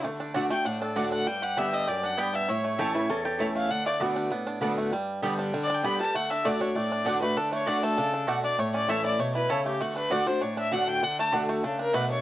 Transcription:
<<
  \new Staff \with { instrumentName = "Fiddle" } { \time 4/4 \key d \major \tempo 4 = 197 r4. g''8 fis''8 a'8 d''8 fis''8 | g''8 fis''8 e''8 ees''8 d''8 fis''8 g''8 e''8 | cis''2. r8 f''8 | fis''8 d''8 r2. |
r2 \tuplet 3/2 { r8 d''8 g''8 } b''8 a''8 | fis''8 e''8 d''8 cis''8 d''4. b'8 | a'8 cis''8 d''8 a'4. r8 d''8 | cis''8 d''8 e''8 d''8 cis''8 b'8 a'8 g'8 |
fis'8 b'8 d''8 c''8 cis''8 e''8 fis''8 g''8 | fis''8 a''8 r4 a'8 bes'8 b'8 cis''8 | }
  \new Staff \with { instrumentName = "Mandolin" } { \time 4/4 \key d \major r4 <a fis' d'' fis''>8 r4. <a fis' d'' fis''>8 r8 | r4 <b g' d'' g''>8 r4. <b g' d'' g''>8 r8 | r4 <a e' cis'' a''>8 r4. <a e' cis'' a''>8 r8 | r4 <b fis' d'' a''>8 r4. <b fis' d'' a''>8 r8 |
r4 <b g' d'' g''>8 r4. <b g' d'' g''>8 r8 | r4 <a fis' d'' fis''>8 r4. <a fis' d'' fis''>8 r8 | r4 <a fis' d'' fis''>8 r4. <a fis' d'' fis''>8 r8 | r4 <a e' cis'' a''>8 r4. <a e' cis'' a''>8 r8 |
r4 <a fis' d'' fis''>8 r4. <a fis' d'' fis''>8 r8 | r4 <a fis' d'' fis''>8 r4. <a fis' d'' fis''>8 r8 | }
  \new Staff \with { instrumentName = "Resonator guitar played with a steel bar" } { \time 4/4 \key d \major r1 | r1 | r4 a'8 b'8 a'8 a'8. r8. | r1 |
r1 | r1 | r1 | r1 |
r1 | r1 | }
  \new Staff \with { instrumentName = "Five-string banjo" } { \time 4/4 \key d \major a8 d'8 d'8 a8 d'8 d'8 d'8 d'8 | g8 g'8 d'8 g8 g'8 d'8 b8 g8 | e'8 a8 g'8 e'8 cis'8 g'8 e'8 a8 | d'8 a8 d'8 d'8 b8 d'8 d'8 a8 |
g4 g8 d'8 g8 d'8 b8 g8 | a8 d'8 a8 d'8 a8 d'8 d'8 a8 | d'8 a8 d'8 a8 d'8 d'8 a8 d'8 | a8 cis'8 a8 e'8 a8 e'8 cis'8 a8 |
a8 d'8 d'8 d'8 d'8 d'8 d'8 d'8 | d'8 a8 d'8 a8 d'8 d'8 a8 d'8 | }
  \new Staff \with { instrumentName = "Steel-string acoustic guitar" } { \time 4/4 \key d \major << { r4 <d a d' fis'>8 <d' fis'>8 r4 <d a d' fis'>4 | r4 <d g b g'>4 r2 | r4 <e a cis' e'>8 <cis' e'>8 r4 <e a cis' e'>4 | r4 <d a b fis'>4 r4 <d a b fis'>4 |
r4 <d g b g'>4 r4 <d g b g'>8 <b g'>8 | r4 <d a d' fis'>8 <d' fis'>8 r4 <d a d' fis'>8 <d' fis'>8 | r4 <d a d' fis'>4 r2 | r4 <e a cis' e'>4 r2 |
r4 <d a d' fis'>8 <d' fis'>8 r4 <d a d' fis'>4 | r4 <d a d' fis'>4 r2 | } \\ { d2 a,2 | r2 fis,4 g,4 | a,2 e,2 | d2 a,2 |
g,2 d2 | d2 a,2 | d2 cis4 b,4 | a,2 b,4 cis4 |
d2 a,2 | d2 cis4 b,4 | } >> }
>>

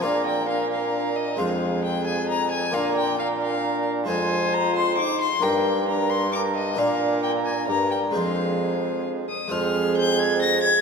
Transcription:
<<
  \new Staff \with { instrumentName = "Violin" } { \time 3/4 \key f \dorian \tempo 4 = 133 f''8 g''8 f''8 f''4 ees''8 | f''4 g''8 aes''8 bes''8 aes''8 | f''8 g''8 f''8 f''4 r8 | aes''4 bes''8 c'''8 d'''8 c'''8 |
g''4 bes''8 c'''8 d'''8 ees''8 | f''4 g''8 aes''8 bes''8 g''8 | f''2 r8 ees'''8 | f'''4 g'''8 aes'''8 bes'''8 aes'''8 | }
  \new Staff \with { instrumentName = "Viola" } { \time 3/4 \key f \dorian bes'4 bes'2 | aes'2. | bes'4 bes'2 | c''2. |
bes'4 bes'4 bes'4 | bes'2 bes'4 | aes'2~ aes'8 r8 | aes'2. | }
  \new Staff \with { instrumentName = "Trombone" } { \time 3/4 \key f \dorian d'4 d'2 | c'2. | d'4 d'2 | f'2 ees'4 |
d'4 d'4 d'4 | d'2 d'4 | c'2~ c'8 r8 | c'2. | }
  \new Staff \with { instrumentName = "Harpsichord" } { \time 3/4 \key f \dorian <bes f' d''>2. | <aes f' c''>2. | <bes f' d''>2. | <aes f' c''>2. |
<bes d' bes'>2. | <bes d' bes'>2. | <aes c' c''>2. | <aes f' c''>2. | }
  \new Staff \with { instrumentName = "Harpsichord" } { \clef bass \time 3/4 \key f \dorian bes,2. | f,2. | bes,2. | f,2. |
g,2. | bes,2 g,4 | f,2~ f,8 r8 | f,2. | }
  \new Staff \with { instrumentName = "Bassoon" } { \clef bass \time 3/4 \key f \dorian bes,2. | f,2. | bes,2. | f,2. |
g,2. | bes,2 g,4 | f,2~ f,8 r8 | f,2. | }
>>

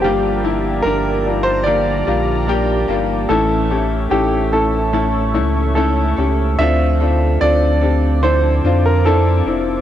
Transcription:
<<
  \new Staff \with { instrumentName = "Analog synth pad" } { \time 4/4 \key d \minor \tempo 4 = 73 <g' d'' a'' bes''>1 | <a' cis'' e'' cis'''>1 | <f c'' a'' d'''>1 | }
  \new Staff \with { instrumentName = "Grand piano" } { \time 4/4 \key d \minor g'4 bes'8. c''16 d''4. r8 | a'4 g'8 a'4. a'4 | e''4 d''4 c''8. bes'16 a'4 | }
  \new Staff \with { instrumentName = "Clean electric guitar" } { \time 4/4 \key d \minor <g, d f bes d' g'>8 <f bes d' g'>8 <f bes d' g'>4 <g, d f bes d' g'>4 <f bes d' g'>8 <f bes d' g'>8 | <a, e a cis' e' a'>8 <a cis' e' a'>8 <a cis' e' a'>4 <a, e a cis' e' a'>4 <a cis' e' a'>8 <a cis' e' a'>8 | <d f c' d' a'>8 <c' d' a'>8 <f c' d' a'>8 <c' d' a'>8 <d f c' d' a'>4 <f c' d' a'>4 | }
  \new Staff \with { instrumentName = "Upright piano" } { \time 4/4 \key d \minor <g bes f'>8 <g bes e'>8 <g bes d'>8 <g bes f'>8 <g bes f'>8 <g bes f'>8 <g bes g'>8 <g bes f'>8 | <a cis' e'>8 <a cis' g'>8 <a cis' e'>8 <a cis' e'>8 <a cis' e'>8 <a cis' e'>8 <a cis' e'>8 <a cis' g'>8 | <c' d' f'>8 <c' d' f'>8 <c' d' f'>8 <c' d' g'>8 <c' d' e'>8 <c' d' f'>8 <c' d' e'>8 <c' d' e'>8 | }
  \new Staff \with { instrumentName = "Upright piano" } { \clef bass \time 4/4 \key d \minor <g, d>4. r2 r8 | <a, e>4. r2 r8 | a,4. r2 r8 | }
  \new Staff \with { instrumentName = "Sub bass" } { \clef bass \time 4/4 \key d \minor g,,4 g,,4. bes,,4 g,,8 | a,,4 a,,4. cis,4 cis,8 | d,4 d,4. f,4 f,,8 | }
>>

